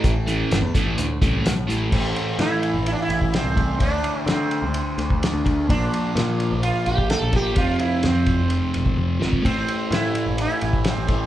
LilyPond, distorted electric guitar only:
\new Staff \with { instrumentName = "Distorted electric guitar" } { \clef bass \time 4/4 \key c \major \tempo 4 = 128 <a, e a>8 <a, e a>8 r8 <a, e a>8 r8 <a, e a>8 r8 <a, e a>8 | \key d \dorian <a, e a>2.~ <a, e a>8 <a, e a>8 | <d a d'>2.~ <d a d'>8 <d a d'>8 | <bes, f bes>2.~ <bes, f bes>8 <bes, f bes>8 |
<f, c f>2.~ <f, c f>8 <f, c f>8 | <a, e a>2.~ <a, e a>8 <a, e a>8 | }